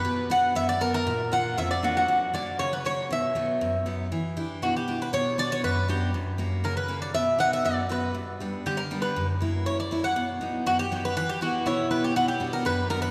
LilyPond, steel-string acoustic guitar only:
\new Staff \with { instrumentName = "Steel-string acoustic guitar" } { \time 2/4 \tempo 4 = 119 b,8 <b d' fis'>8 fis,8 <b d' fis'>8 | ais,8 <ais d' eis'>8 eis,8 <ais d' eis'>8 | fis,8 <fis ais cis'>8 cis8 <fis ais cis'>8 | b,8 <dis fis b>8 fis,8 <fis b dis'>8 |
e8 <d' e' g'>8 b,8 <d' e' g'>8 | b,8 <b d' fis'>8 fis,8 <b d' fis'>8 | fis,8 <ais cis' fis'>8 cis8 <ais cis' fis'>8 | b,8 <b dis' fis'>8 fis,8 <b dis' fis'>8 |
g,8 <g b d'>8 d8 <g b d'>8 | fis,8 <fis ais e'>8 cis8 <fis ais e'>8 | b,8 <fis b dis'>8 fis,8 <fis b dis'>8 | e8 <b e' g'>8 b,8 <b e' g'>8 |
b,8 <b d' fis'>8 fis,8 <b d' fis'>8 | }